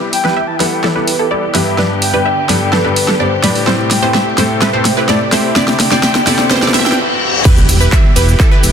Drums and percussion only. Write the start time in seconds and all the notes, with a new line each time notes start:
0.13 open hi-hat
0.25 snare
0.60 snare, open hi-hat
0.84 snare
1.08 open hi-hat
1.55 snare, open hi-hat
1.78 snare
2.02 open hi-hat
2.49 snare, open hi-hat
2.73 snare
2.96 open hi-hat
3.08 snare
3.44 snare, open hi-hat
3.55 open hi-hat
3.67 snare
3.91 snare, open hi-hat
4.14 snare
4.38 snare, open hi-hat
4.62 snare
4.85 snare, open hi-hat
5.09 snare
5.32 snare, open hi-hat
5.56 snare
5.68 snare
5.80 snare, open hi-hat
5.91 snare
6.03 snare
6.15 snare
6.27 snare, open hi-hat
6.39 snare
6.51 snare
6.57 snare
6.62 snare
6.68 snare
6.74 snare, open hi-hat
6.80 snare
6.86 snare
6.92 snare
7.45 kick, crash, shaker
7.57 shaker
7.69 open hi-hat, ride, shaker
7.81 shaker
7.92 kick, clap, shaker
8.16 open hi-hat, ride, shaker
8.28 shaker
8.40 kick, clap, shaker
8.63 open hi-hat, ride, shaker